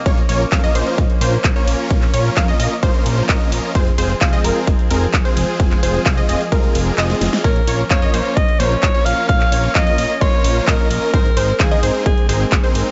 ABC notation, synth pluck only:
X:1
M:4/4
L:1/16
Q:1/4=130
K:Bbm
V:1 name="Synth pluck"
d z d z f e c2 z2 c z2 d3- | d2 d2 f e e z c4 e4 | c z c z f e B2 z2 B z2 c3- | c2 c2 f e e z B4 e4 |
d z d z f e c2 z2 c z2 d3- | d2 d2 f e e z c'4 e4 | c z c z f e c2 z2 c z2 c3 |]